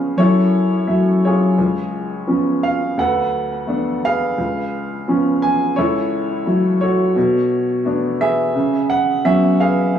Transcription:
0.00 0.13 C#2 medium
0.00 0.14 F3 soft
0.00 0.15 B3 soft
0.00 0.15 C#4 soft
0.00 0.14 G#4 medium
0.00 0.14 B4 soft
0.00 0.19 F5 medium
0.17 1.54 F#2 medium
0.17 1.55 E4 medium
0.17 1.55 A4 medium
0.17 0.84 C#5 medium
0.87 1.56 F#3 soft
0.87 1.55 A3 soft
0.87 1.56 E5 soft
1.25 2.60 F4 soft
1.25 2.60 G#4 soft
1.25 2.68 C#5 medium
1.58 2.94 C#2 medium
2.27 2.95 F3 soft
2.27 2.95 B3 soft
2.27 2.96 C#4 soft
2.63 2.99 F5 medium
2.97 4.33 D2 medium
2.97 4.35 A4 medium
2.97 4.04 B4 medium
2.97 3.64 F#5 medium
3.67 4.35 A3 soft
3.67 4.35 B3 soft
3.67 4.36 D4 soft
4.05 5.40 G#4 medium
4.05 5.40 B4 medium
4.05 5.47 F5 medium
4.38 5.73 C#2 medium
5.08 5.75 F3 soft
5.08 5.75 B3 soft
5.08 5.76 C#4 medium
5.42 5.78 G#5 medium
5.76 7.12 C#2 medium
5.76 6.46 E4 medium
5.76 6.81 A4 medium
5.76 6.42 C#5 medium
6.46 7.14 F#3 soft
6.46 7.14 A3 soft
6.46 7.14 E4 medium
6.81 8.18 F#4 medium
6.81 8.18 A4 medium
6.81 8.25 C#5 medium
7.16 8.51 B2 medium
7.85 8.53 A3 soft
7.85 8.53 B3 soft
7.85 8.53 D4 medium
8.21 9.57 G#4 medium
8.21 9.57 B4 medium
8.21 8.92 E5 medium
8.55 9.92 C#3 medium
8.90 9.26 F#5 medium
9.24 9.93 F#3 soft
9.24 9.93 B3 soft
9.24 9.94 C#4 soft
9.24 9.61 E5 medium
9.60 9.99 G#4 medium
9.60 9.99 B4 medium
9.60 9.99 F5 medium
9.95 9.99 C#3 medium

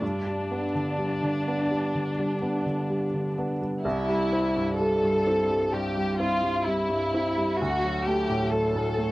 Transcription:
0.01 1.90 G2 medium
0.01 3.65 D4 soft
0.27 0.64 G3 soft
0.51 0.72 B3 soft
0.51 0.72 D4 soft
0.75 1.13 D3 soft
0.98 1.36 G3 soft
1.22 1.60 D3 soft
1.47 1.68 B3 soft
1.47 1.68 D4 soft
1.71 2.08 G3 soft
1.95 2.32 D3 soft
2.19 2.56 G3 soft
2.42 2.63 B3 soft
2.42 2.64 D4 soft
2.66 3.04 D3 soft
2.90 3.28 G3 soft
3.14 3.52 D3 soft
3.38 3.59 B3 soft
3.38 3.59 D4 soft
3.61 3.85 G3 soft
3.84 5.69 C2 medium
3.84 4.75 E4 medium
4.09 4.46 G3 soft
4.33 4.53 C4 soft
4.33 4.54 E4 soft
4.56 4.94 G2 soft
4.79 5.17 G3 medium
4.79 5.73 A4 medium
5.03 5.41 G2 soft
5.27 5.47 C4 soft
5.27 5.48 E4 soft
5.50 5.87 G3 soft
5.73 6.10 G2 medium
5.73 6.19 G4 medium
5.97 6.34 G3 medium
6.20 6.41 C4 soft
6.20 6.41 E4 soft
6.20 6.66 F4 medium
6.43 6.80 G2 soft
6.66 7.04 G3 soft
6.66 7.59 E4 medium
6.90 7.27 G2 soft
7.14 7.34 C4 soft
7.14 7.35 E4 medium
7.37 7.60 G3 soft
7.59 9.12 D2 medium
7.59 8.06 F#4 medium
7.84 8.20 F#3 soft
8.06 8.27 A3 soft
8.06 8.52 G4 medium
8.06 8.28 A4 medium
8.29 8.66 A2 soft
8.52 8.89 F#3 soft
8.52 9.12 A4 medium
8.75 9.12 A2 soft
8.98 9.12 A3 soft
8.98 9.12 A4 soft

